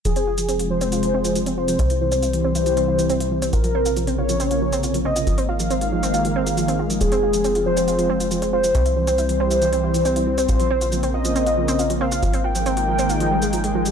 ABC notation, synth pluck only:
X:1
M:4/4
L:1/16
Q:1/4=138
K:Fm
V:1 name="Synth pluck"
F, C F F, C F F, C F F, C F F, C F F, | C =E =E, C E E, C E E, C E E, C E E, C | F F, C F F, C F F, C F F, C F F, C F | F, C F F, C F F, C F F, C F F, C F F, |
F, C F F, C F F, C F F, C F F, C F F, | C =E =E, C E E, C E E, C E E, C E E, C | F F, C F F, C F F, C F F, C F F, C F | F, C F F, C F F, C F F, G, A, F, A, F, G, |]